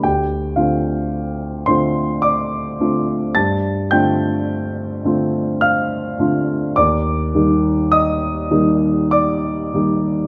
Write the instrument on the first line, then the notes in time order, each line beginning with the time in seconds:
grand piano
0.03 D2 G4 G5
0.56 D3 A3 C4 F4 F5
1.66 D3 A3 C4 F4 C5 C6
2.22 D5 D6
2.80 D3 A3 C4 F4
3.35 G2 A5 A6
3.91 D3 A3 C4 F4 G5 G6
5.04 D3 A3 C4 F4
5.61 F5 F6
6.19 D3 A3 C4 F4
6.76 D#2 D5 D6
7.35 D#3 G3 A#3 D#4
7.92 D#5 D#6
8.51 D#3 G3 A#3 D#4
9.11 D5 D6
9.74 D#3 G3 A#3 D#4